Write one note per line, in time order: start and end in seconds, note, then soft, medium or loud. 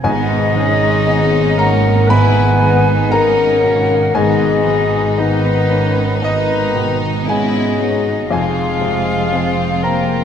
0.03 4.12 G#1 medium
0.03 2.05 G#2 medium
0.03 3.94 G#2 medium
0.03 4.11 G#2 medium
0.03 1.54 G#2 loud
0.03 1.03 G#3 medium
0.03 1.55 G#3 loud
0.03 0.52 B3 medium
0.03 2.05 D#4 medium
0.03 1.54 G#4 loud
0.03 1.60 D#5 loud
0.03 1.54 G#5 medium
0.31 4.21 B2 medium
0.54 1.37 D#3 medium
0.54 4.46 G#3 medium
0.54 2.10 C#4 medium
1.06 1.54 B3 medium
1.06 1.59 B3 medium
1.06 1.54 G#4 medium
1.06 1.54 D#5 medium
1.57 2.09 A#3 medium
1.57 2.40 B3 medium
1.57 2.09 A#4 loud
1.57 2.10 A#4 loud
1.57 2.08 D#5 medium
1.57 2.11 F#5 loud
1.57 2.06 A#5 loud
2.08 4.11 G#2 medium
2.08 3.12 G#3 medium
2.08 3.12 B3 medium
2.08 3.12 B3 loud
2.08 2.60 E4 medium
2.08 3.13 B4 loud
2.08 2.60 D#5 medium
2.08 3.12 G#5 loud
2.08 3.08 B5 loud
2.58 3.43 D#3 medium
2.58 4.13 D#4 medium
2.58 5.71 D#5 medium
3.11 3.59 B3 medium
3.11 4.16 C#4 medium
3.11 3.64 D#4 medium
3.11 3.59 G#4 medium
3.11 4.15 A#4 loud
3.11 4.16 A#4 medium
3.11 3.60 D#5 medium
3.11 4.17 F#5 loud
3.11 4.11 A#5 loud
3.64 4.46 B2 medium
3.64 4.14 A#3 medium
3.90 4.67 B3 medium
4.14 8.28 G#1 medium
4.14 6.18 G#2 medium
4.14 8.28 G#2 medium
4.14 8.06 G#2 medium
4.14 5.17 G#3 loud
4.14 5.16 B3 medium
4.14 5.19 B3 medium
4.14 4.64 D#4 medium
4.14 5.21 G#4 loud
4.14 5.19 D#5 loud
4.14 5.14 G#5 medium
4.65 5.49 D#3 medium
4.65 8.06 B3 medium
4.65 7.25 D#4 medium
5.17 6.21 D#3 medium
5.17 6.20 B3 medium
5.17 5.66 B3 medium
5.17 5.69 D#4 medium
5.17 6.06 D#4 medium
5.17 5.66 G#4 medium
5.17 6.21 B4 medium
5.17 6.18 D#5 medium
5.46 7.28 B4 medium
5.69 6.54 B3 medium
5.69 6.23 C#4 medium
5.69 6.22 D#5 medium
6.22 8.28 G#2 medium
6.22 7.27 D#3 medium
6.22 8.32 B3 medium
6.22 7.30 D#4 medium
6.22 7.00 D#4 medium
6.22 6.99 B4 loud
6.22 6.75 D#5 medium
6.22 7.26 D#5 loud
6.76 7.61 B2 medium
6.76 8.36 D#5 medium
7.27 8.14 G#3 medium
7.27 7.76 B3 medium
7.27 8.32 C#4 medium
7.27 7.80 E4 medium
7.27 7.77 G#4 medium
7.27 8.28 G#4 medium
7.27 8.36 B4 medium
7.27 7.77 D#5 medium
7.27 8.33 D#5 medium
7.27 8.28 G#5 loud
7.80 8.31 B3 medium
7.80 8.31 D#4 medium
7.80 8.36 D#4 medium
8.07 8.36 B3 medium
8.31 10.24 F1 medium
8.31 10.24 F2 medium
8.31 9.80 G#3 medium
8.31 9.31 G#3 medium
8.31 10.24 C4 medium
8.31 10.24 F4 medium
8.31 9.85 G#4 loud
8.31 9.85 F5 loud
8.31 9.80 G#5 medium
8.58 10.24 C3 soft
8.81 9.63 C3 medium
8.81 10.24 C4 medium
9.09 10.24 F4 medium
9.32 10.24 G#3 medium
9.32 9.80 C4 medium
9.32 10.24 C4 medium
9.32 9.80 G#4 medium
9.32 9.80 F5 medium
9.60 10.24 C5 medium
9.83 10.24 A#3 medium
9.83 10.24 C4 medium
9.83 10.24 A#4 medium
9.83 10.24 F5 medium
9.83 10.24 G5 medium
9.83 10.24 A#5 medium